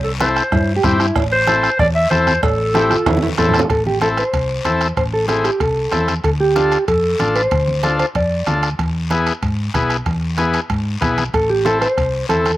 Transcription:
Already playing: C2
0.04 A4, high conga
0.20 C4 E4 A4 C5, bombo rim, high conga, short guiro
0.36 bombo rim, short guiro
0.52 G2 E4, bombo low, bombo rim, cowbell, high conga, low conga, long guiro
0.76 G4
0.84 G2 C4 E4 G4, bombo low, bombo rim, high conga, low conga, short guiro
1.00 E4, bombo rim, short guiro
1.16 A1, bombo low, bombo rim, cowbell, long guiro
1.32 C5, high conga
1.47 C4 E4 A4, bombo rim, high conga, short guiro
1.63 bombo rim, short guiro
1.79 E2 D5, bombo low, bombo rim, cowbell, high conga, low conga, long guiro
1.95 E5
2.11 E2 C4 E4 A4 C5, bombo rim, high conga, short guiro
2.27 bombo rim, high conga, short guiro
2.43 A1 A4, bombo low, bombo rim, cowbell, long guiro
2.59 high conga
2.74 C4 E4 G4 A4, bombo rim, high conga, short guiro
2.90 F4, bombo rim, high conga, short guiro
3.06 E2 E4, bombo low, bombo rim, cowbell, high conga, high timbale, long guiro
3.17 high conga
3.23 E4, high timbale
3.28 high conga
3.38 E2 C4 E4 A4, bombo rim, low conga, low timbale, short guiro
3.49 low conga
3.54 bombo rim, low timbale, short guiro
3.59 low conga
3.70 A1 A4, bombo low, bombo rim, high conga, high timbale, long guiro
3.86 G4, high conga
4.01 C4 E4 A4, bombo rim, high conga, high timbale, short guiro
4.17 C5, bombo rim, high timbale, short guiro
4.33 C2, bombo low, bombo rim, high conga, high timbale, long guiro
4.65 E2 C4 E4 A4, bombo rim, high conga, high timbale, short guiro
4.81 bombo rim, high timbale, short guiro
4.97 A1 C5, bombo low, bombo rim, high conga, high timbale, long guiro
5.14 A4
5.28 C4 E4 G#4 A4, bombo rim, high conga, high timbale, short guiro
5.44 G4, bombo rim, high timbale, short guiro
5.60 C2 A4, bombo low, bombo rim, high conga, high timbale, long guiro
5.91 E2 C4 E4 A4, bombo rim, high conga, high timbale, low timbale, short guiro
6.08 bombo rim, high conga, high timbale, short guiro
6.24 D2 A4, bombo low, bombo rim, high conga, high timbale, long guiro
6.40 G4
6.56 D4 F4 A4, bombo rim, high conga, high timbale, short guiro
6.72 bombo rim, high timbale, short guiro
6.88 F2 A4, bombo low, bombo rim, high conga, high timbale, long guiro
7.20 A1 D4 F4 A4, bombo rim, high conga, high timbale, short guiro
7.36 C5, bombo rim, high timbale, short guiro
7.51 D2, bombo low, bombo rim, high conga, high timbale, long guiro
7.67 high conga
7.83 D4 F4 A4, bombo rim, high conga, high timbale, short guiro
7.99 C5, bombo rim, high timbale, short guiro
8.15 F2 D5, bombo low, bombo rim, high conga, high timbale, long guiro
8.47 D2 D4 F4 A4, bombo rim, high conga, high timbale, low timbale, short guiro
8.63 bombo rim, high timbale, short guiro
8.79 E2, bombo low, bombo rim, high conga, high timbale, long guiro
9.10 B3 E4 G#4, bombo rim, high conga, high timbale, short guiro
9.26 bombo rim, high timbale, short guiro
9.42 G#2, bombo low, bombo rim, high conga, high timbale, long guiro
9.74 B1 B3 E4 G#4, bombo low, bombo rim, high conga, high timbale, short guiro
9.90 bombo rim, high timbale, short guiro
10.06 E2, bombo low, bombo rim, high conga, high timbale, long guiro
10.38 B3 E4 G#4, bombo rim, high conga, high timbale, short guiro
10.53 bombo rim, high timbale, short guiro
10.70 G#2, bombo low, bombo rim, high conga, high timbale, long guiro
11.01 B1 B3 E4 G#4, bombo low, bombo rim, high conga, high timbale, short guiro
11.18 bombo rim, high conga, high timbale, short guiro
11.34 A1 A4, bombo low, bombo rim, high conga, high timbale, long guiro
11.50 G4
11.65 C4 E4 A4, bombo rim, high conga, high timbale, short guiro
11.81 C5, bombo rim, high timbale, short guiro
11.98 C2, bombo low, bombo rim, high conga, high timbale, long guiro
12.29 E2 C4 E4 A4, bombo rim, high conga, high timbale, short guiro
12.45 bombo rim, high conga, high timbale, short guiro

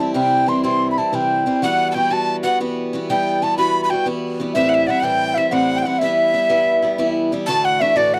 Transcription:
0.00 E3 G3 C4 E4 A5
0.14 C3 E3 G3 C4 E4 G5
0.46 E3 G3 C4 E4 C6
0.64 C3 E3 G3 C4 E4 C6
0.91 B5
0.98 G3 C4 E4 A5
1.13 C3 E3 G3 C4 E4 G5
1.46 E3 G3 C4 E4
1.56 G5
1.62 E3 G3 B3 F#4 F#5
1.92 E3 G3 G5 A5
1.96 B3 F#4 G5
2.10 E3 G3 B3 F#4 A5
2.43 G3 B3 F#4 F#5
2.60 E3 G3 B3 F#4
2.93 E3 G3 B3 F#4
3.10 E3 G3 B3 G5
3.42 E3 G3 B3 F#4 A5
3.58 E3 G3 B3 F#4 B5
3.82 B5
3.90 G3 B3 F#4 G5
4.06 E3 G3 B3 F#4
4.40 E3 G3 B3 F#4
4.54 A2 E3 G3 C4 E4 E5
4.69 F#5
4.74 E5
4.87 E3 G3 C4 E4 D5 E5 F#5
5.00 A2 E3 G3 C4 E4 F#5 G5
5.05 G5
5.27 G5
5.35 G3 C4 E4 E5
5.50 A2 E3 G3 C4 E4 F#5
5.74 G5
5.82 E3 G3 F#5
5.86 C4 E4
5.99 E3 G3 B3 E5
6.03 E4 E5
6.34 E3 G3 B3 E4
6.49 E3 G3 B3 E4
6.82 G3 B3 E4
6.98 E3 G3 B3 E4
7.32 E3 G3 B3 E4
7.46 D2 A2 E3 A3 D4 F#4 A5
7.65 F#5
7.80 E3 A3 D4 F#4 E5
7.96 D2 A2 E3 A3 D4 F#4 D5
8.14 F#5

